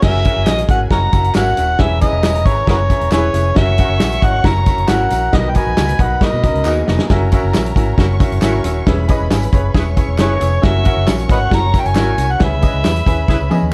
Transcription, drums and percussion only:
0.02 kick loud
0.02 snare loud
0.02 crash loud
0.02 tambourine soft
0.25 kick medium
0.25 closed hi-hat medium
0.25 tambourine medium
0.47 snare loud
0.47 clap loud
0.47 tambourine loud
0.58 closed hi-hat medium
0.69 kick loud
0.69 closed hi-hat medium
0.91 kick medium
0.91 snare loud
0.91 tambourine medium
1.13 kick medium
1.13 snare soft
1.13 closed hi-hat medium
1.13 tambourine medium
1.24 closed hi-hat soft
1.35 snare loud
1.35 clap medium
1.35 tambourine loud
1.57 closed hi-hat medium
1.57 tambourine medium
1.79 kick loud
1.79 snare loud
2.01 kick medium
2.01 closed hi-hat medium
2.01 tambourine medium
2.23 snare loud
2.23 clap loud
2.23 tambourine loud
2.35 closed hi-hat medium
2.46 kick medium
2.46 closed hi-hat medium
2.46 tambourine soft
2.67 kick loud
2.67 snare loud
2.67 tambourine medium
2.90 kick medium
2.90 snare soft
2.90 closed hi-hat medium
2.90 tambourine medium
3.01 closed hi-hat soft
3.12 snare loud
3.12 clap medium
3.12 tambourine medium
3.34 closed hi-hat medium
3.34 tambourine medium
3.56 kick loud
3.56 snare loud
3.56 tambourine soft
3.78 kick medium
3.78 closed hi-hat medium
3.78 tambourine medium
4.00 snare loud
4.00 clap loud
4.00 tambourine loud
4.12 closed hi-hat soft
4.22 kick loud
4.22 closed hi-hat medium
4.22 tambourine soft
4.44 kick medium
4.44 snare loud
4.44 tambourine medium
4.66 kick medium
4.66 snare soft
4.66 closed hi-hat medium
4.66 tambourine medium
4.78 closed hi-hat soft
4.88 snare loud
4.88 clap loud
4.88 tambourine loud
5.10 closed hi-hat medium
5.10 tambourine medium
5.33 kick loud
5.33 snare loud
5.33 tambourine soft
5.55 kick medium
5.55 closed hi-hat medium
5.55 tambourine medium
5.77 snare loud
5.77 clap loud
5.77 tambourine loud
5.89 closed hi-hat medium
5.99 kick loud
5.99 closed hi-hat medium
6.21 kick medium
6.21 snare loud
6.21 tambourine medium
6.43 kick medium
6.43 snare soft
6.43 closed hi-hat medium
6.43 tambourine medium
6.55 closed hi-hat soft
6.65 clap loud
6.65 tambourine medium
6.88 snare medium
6.88 tambourine medium
6.99 snare medium
7.10 kick loud
7.10 snare loud
7.10 tambourine soft
7.32 kick medium
7.32 closed hi-hat medium
7.32 tambourine medium
7.54 snare loud
7.54 clap loud
7.54 tambourine loud
7.66 closed hi-hat medium
7.76 kick loud
7.76 closed hi-hat medium
7.76 tambourine soft
7.98 kick loud
7.98 snare loud
7.98 tambourine medium
8.20 kick medium
8.20 snare soft
8.20 closed hi-hat medium
8.20 tambourine medium
8.32 closed hi-hat soft
8.42 snare loud
8.42 clap medium
8.42 tambourine loud
8.64 closed hi-hat medium
8.64 tambourine medium
8.87 kick loud
8.87 snare loud
9.08 kick medium
9.08 closed hi-hat medium
9.08 tambourine medium
9.31 snare loud
9.31 clap loud
9.31 tambourine loud
9.43 closed hi-hat medium
9.53 kick loud
9.53 closed hi-hat medium
9.53 tambourine soft
9.74 kick loud
9.74 snare loud
9.74 tambourine medium
9.97 kick medium
9.97 closed hi-hat medium
9.97 tambourine medium
10.19 snare loud
10.19 clap loud
10.19 tambourine loud
10.41 closed hi-hat medium
10.41 tambourine medium
10.63 kick loud
10.63 snare loud
10.63 tambourine soft
10.85 kick medium
10.85 closed hi-hat medium
10.85 tambourine medium
11.08 snare loud
11.08 clap loud
11.08 tambourine loud
11.19 closed hi-hat medium
11.29 kick loud
11.29 closed hi-hat medium
11.29 tambourine soft
11.51 kick medium
11.51 snare loud
11.51 tambourine medium
11.74 kick medium
11.74 snare soft
11.74 closed hi-hat medium
11.74 tambourine medium
11.86 closed hi-hat soft
11.95 snare loud
11.95 clap loud
11.95 tambourine loud
12.18 closed hi-hat medium
12.18 tambourine medium
12.40 kick loud
12.40 snare loud
12.40 tambourine soft
12.62 kick medium
12.62 closed hi-hat medium
12.62 tambourine medium
12.85 snare loud
12.85 clap loud
12.85 tambourine loud
12.96 closed hi-hat soft
13.07 kick loud
13.07 closed hi-hat medium
13.07 tambourine soft
13.28 kick medium
13.28 snare medium
13.28 tambourine medium
13.51 high tom medium
13.51 tambourine medium

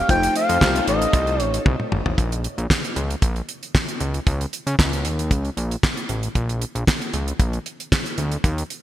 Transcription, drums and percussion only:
0.09 kick loud
0.09 closed hi-hat medium
0.23 closed hi-hat medium
0.36 closed hi-hat medium
0.49 closed hi-hat medium
0.61 kick loud
0.61 snare loud
0.61 clap loud
0.76 closed hi-hat medium
0.88 closed hi-hat medium
1.02 closed hi-hat medium
1.13 kick loud
1.13 closed hi-hat loud
1.27 closed hi-hat soft
1.40 closed hi-hat medium
1.54 closed hi-hat medium
1.66 kick loud
1.66 high tom medium
1.80 mid tom medium
1.92 mid tom medium
2.06 floor tom medium
2.18 kick medium
2.18 closed hi-hat medium
2.32 closed hi-hat medium
2.44 closed hi-hat medium
2.58 closed hi-hat medium
2.70 kick loud
2.70 snare loud
2.70 clap medium
2.84 closed hi-hat medium
2.96 closed hi-hat medium
3.10 closed hi-hat medium
3.22 kick loud
3.22 closed hi-hat medium
3.36 closed hi-hat soft
3.49 closed hi-hat medium
3.63 closed hi-hat soft
3.75 kick loud
3.75 snare loud
3.75 clap medium
3.88 closed hi-hat soft
4.00 closed hi-hat medium
4.14 closed hi-hat soft
4.27 kick loud
4.27 closed hi-hat medium
4.41 closed hi-hat medium
4.53 closed hi-hat medium
4.67 closed hi-hat medium
4.79 kick loud
4.79 snare loud
4.79 clap medium
4.93 closed hi-hat medium
5.05 closed hi-hat medium
5.19 closed hi-hat medium
5.31 kick loud
5.31 closed hi-hat medium
5.45 closed hi-hat soft
5.57 closed hi-hat medium
5.71 closed hi-hat soft
5.83 kick loud
5.83 snare loud
5.83 clap medium
5.97 closed hi-hat soft
6.09 closed hi-hat medium
6.23 closed hi-hat medium
6.35 kick medium
6.35 closed hi-hat medium
6.49 closed hi-hat soft
6.62 closed hi-hat medium
6.75 closed hi-hat medium
6.87 kick loud
6.87 snare loud
6.87 clap medium
7.02 closed hi-hat medium
7.14 closed hi-hat medium
7.28 closed hi-hat soft
7.40 kick loud
7.40 closed hi-hat medium
7.53 closed hi-hat soft
7.66 closed hi-hat medium
7.80 closed hi-hat medium
7.92 kick loud
7.92 snare loud
7.92 clap medium
8.06 closed hi-hat soft
8.18 closed hi-hat medium
8.32 closed hi-hat medium
8.44 kick loud
8.44 closed hi-hat medium
8.58 closed hi-hat medium
8.70 closed hi-hat medium

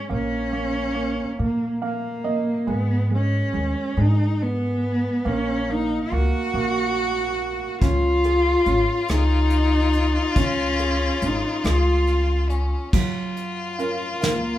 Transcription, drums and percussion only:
7.82 kick medium
7.82 closed hi-hat medium
8.24 closed hi-hat medium
8.66 closed hi-hat medium
9.08 cross-stick medium
9.08 closed hi-hat medium
9.50 closed hi-hat medium
9.93 closed hi-hat medium
10.36 kick medium
10.36 closed hi-hat medium
10.79 closed hi-hat soft
11.22 closed hi-hat medium
11.64 cross-stick medium
11.64 closed hi-hat medium
12.07 closed hi-hat soft
12.50 closed hi-hat soft
12.93 kick medium
12.93 crash medium
13.37 closed hi-hat soft
13.79 closed hi-hat soft
14.22 snare medium
14.22 closed hi-hat medium

